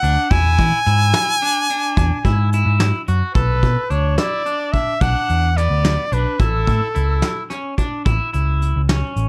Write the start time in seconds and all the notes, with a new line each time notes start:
Already playing: F#5
0.03 D2 D4, closed hi-hat
0.30 E2 E4 G#5, kick, closed hi-hat
0.58 E3, kick, closed hi-hat
0.86 G#2 E4, closed hi-hat
1.14 snare, closed hi-hat
1.42 D4, closed hi-hat
1.69 D4, closed hi-hat
1.97 E2, kick, closed hi-hat
2.25 G#2 E4, kick, closed hi-hat
2.53 E4, closed hi-hat
2.66 G#2
2.80 snare, closed hi-hat
3.08 F#2 F#4, closed hi-hat
3.35 B1 A4 B4, kick, closed hi-hat
3.63 B2, kick, closed hi-hat
3.90 D2 D4 C#5, closed hi-hat
4.18 E4 D5, snare, closed hi-hat
4.46 D4, closed hi-hat
4.73 E5, kick, closed hi-hat
5.01 B1 D4 F#5, kick, closed hi-hat
5.29 E2, closed hi-hat
5.57 B3 D5, snare, closed hi-hat
5.70 D2
5.85 snare, closed hi-hat
6.12 B1 D4 B4, closed hi-hat
6.39 A1 E4 A4, kick, closed hi-hat
6.67 A2, kick, closed hi-hat
6.95 C#2 E4, closed hi-hat
7.22 snare, closed hi-hat
7.50 C#4, snare, closed hi-hat
7.78 D4, kick, closed hi-hat
8.05 A1 E4, kick, closed hi-hat
8.33 C#2 E4, closed hi-hat
8.62 closed hi-hat
8.76 C#2
8.89 C#4, snare, closed hi-hat
9.16 A1, closed hi-hat